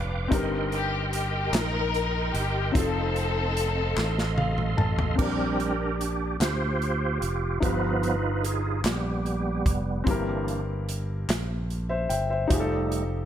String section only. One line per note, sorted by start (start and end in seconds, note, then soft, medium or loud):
0.00 0.28 D4 medium
0.00 0.28 F4 medium
0.72 1.10 G4 loud
1.13 1.51 G4 medium
1.52 2.72 D#4 medium
1.52 2.34 A#4 loud
2.32 2.74 G4 medium
2.72 4.74 C4 medium
2.72 4.74 D#4 medium
2.72 4.77 A4 medium